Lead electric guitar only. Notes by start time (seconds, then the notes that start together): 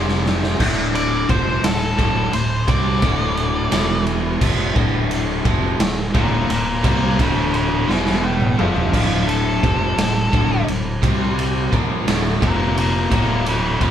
0.95 D5
1.30 C5
1.65 A4
2.34 C5
2.69 D5
6.15 F4 D5
6.51 F4 D5
6.86 F4 D5
7.21 A4 C5
7.55 A4 C5
7.91 E4 C5
8.24 E4 A4
8.59 C4 A4
8.94 C4 A4
9.29 A4
12.43 F4 D5
12.78 F4 D5
13.12 F4 D5
13.48 A4 C5
13.83 A4 C5